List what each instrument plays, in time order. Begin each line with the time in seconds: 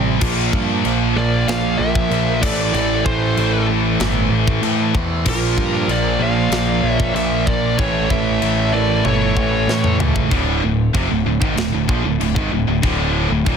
Already playing: picked electric bass A1, distorted electric guitar C3 G3 C4, string section C4 G4 D5 E5
0.21 picked electric bass A#1, distorted electric guitar A#2 F3 A#3, string section A#3 F4 C5, kick, china, crash
0.53 picked electric bass G2, kick
0.85 picked electric bass A#1, distorted electric guitar A#2 F3 A#3, china
1.16 picked electric bass A#1, distorted electric guitar A#2 F3 A#3, lead electric guitar A#4 D5
1.47 picked electric bass A#1, distorted electric guitar A#2 F3 A#3, lead electric guitar D5 F5, snare, china
1.79 picked electric bass A#1, lead electric guitar A#4 E5
1.95 kick
2.10 picked electric bass A#1, distorted electric guitar A#2 F3 A#3, china
2.41 picked electric bass A1, distorted electric guitar A2 E3 A3, string section A3 E4 A4, lead electric guitar A4 D5, kick, crash
2.73 picked electric bass A1, distorted electric guitar A2 E3 A3, lead electric guitar A4 D5, china
3.05 picked electric bass A1, lead electric guitar A4 C5, kick
3.37 picked electric bass A1, distorted electric guitar A2 E3 A3, china
3.68 distorted electric guitar A2 E3 A3
3.99 picked electric bass G1, distorted electric guitar A2 E3 A3, snare, china
4.31 picked electric bass A1
4.47 kick
4.62 picked electric bass A2, distorted electric guitar A2 E3 A3, china
4.94 picked electric bass E2, distorted electric guitar A2 E3 A3, kick
5.25 picked electric bass A#1, distorted electric guitar A#2 F3 A#3, string section A#3 F4 D5, lead electric guitar F4 A#4, kick, china, crash
5.57 picked electric bass G2, kick
5.88 picked electric bass A#1, distorted electric guitar A#2 F3 A#3, lead electric guitar A#4 D5, china
6.19 picked electric bass A#1, distorted electric guitar A#2 F3 A#3, lead electric guitar D5 F5
6.50 picked electric bass A#1, distorted electric guitar A#2 F3 A#3, snare, china
6.82 picked electric bass A#1, lead electric guitar C#5
6.87 lead electric guitar E5
7.00 kick
7.14 picked electric bass A#1, distorted electric guitar A#2 F3 A#3, lead electric guitar A#4 E5, china
7.47 distorted electric guitar A#2 F3 A#3, lead electric guitar A#4 D5, kick
7.78 picked electric bass A1, distorted electric guitar A2 E3 A3, string section E3 E4 E5 A5, lead electric guitar A4 C#5, kick, china
8.10 picked electric bass A1, lead electric guitar C#5 E5, kick
8.42 picked electric bass A1, distorted electric guitar A2 E3 A3, china
8.73 distorted electric guitar A2 E3 A3, lead electric guitar A#4 D5
9.05 picked electric bass G1, distorted electric guitar A2 E3 A3, lead electric guitar A4 C#5, high tom
9.36 picked electric bass A1, kick
9.67 picked electric bass A2, distorted electric guitar A2 E3 A3, snare
9.84 mid tom
9.99 picked electric bass C#2, distorted electric guitar A2 E3 A3, floor tom
10.16 kick
10.30 picked electric bass D1, distorted electric guitar D2 A2 D3, string section D3 A3 E4 F4, kick, china
10.63 picked electric bass D1, distorted electric guitar D2 A2
10.94 picked electric bass F1, distorted electric guitar F2 C3, kick, china
11.11 picked electric bass D1, distorted electric guitar D2 A2
11.26 picked electric bass D1, distorted electric guitar D2 A2
11.41 picked electric bass G#1, distorted electric guitar G#2 D#3, kick
11.57 picked electric bass D1, distorted electric guitar D2 A2, snare, china
11.73 picked electric bass D1, distorted electric guitar D2 A2
11.88 picked electric bass A#1, distorted electric guitar A#2 F3, kick
12.04 picked electric bass D1, distorted electric guitar D2 A2
12.20 picked electric bass D1, distorted electric guitar D2 A2, china
12.36 picked electric bass G#1, distorted electric guitar G#2 D#3, kick
12.51 picked electric bass D1, distorted electric guitar D2 A2
12.67 picked electric bass D1, distorted electric guitar D2 A2
12.83 picked electric bass D1, distorted electric guitar D2 A2 D3, kick, china
13.30 picked electric bass D1, distorted electric guitar D2 A2
13.46 picked electric bass D#1, distorted electric guitar D#2 A#2, kick, china